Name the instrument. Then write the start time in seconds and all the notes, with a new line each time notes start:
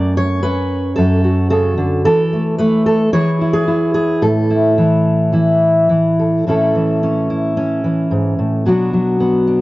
steel-string acoustic guitar
Already playing: F#2 A3 C#4 D5
0.17 C#5
0.43 C#4 B4
0.96 F#2 A4
1.24 F#4
1.50 C#3 A4
1.77 D3
2.05 E3 A4
2.33 A3
2.58 A3 B4
2.86 A4
3.13 E3 E4 G#4 C#5
3.41 E4
3.53 G#4
3.67 E4
3.94 G#4
4.22 A2 A4
4.50 E4
4.78 E3
5.32 E3 E4
5.89 E3
6.19 A4
6.46 A2 E3 C#4 E4 A4
6.75 E3
7.03 C#4
7.30 E4
7.57 C#4
7.84 E3
8.11 G#2
8.39 A2
8.66 B2 F#3 B3 D4 F#4
8.93 F#3
9.20 B3
9.47 D4